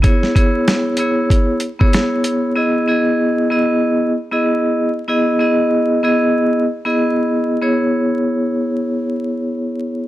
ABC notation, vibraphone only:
X:1
M:4/4
L:1/16
Q:"Swing 16ths" 1/4=95
K:C#m
V:1 name="Vibraphone"
[B,EGc]2 [B,EGc]4 [B,EGc]4 z [B,EGc]4- [B,EGc] | [B,EGd]2 [B,EGd]4 [B,EGd]4 z [B,EGd]4 z | [B,EGd]2 [B,EGd]4 [B,EGd]4 z [B,EGd]4- [B,EGd] | [B,EGc]16 |]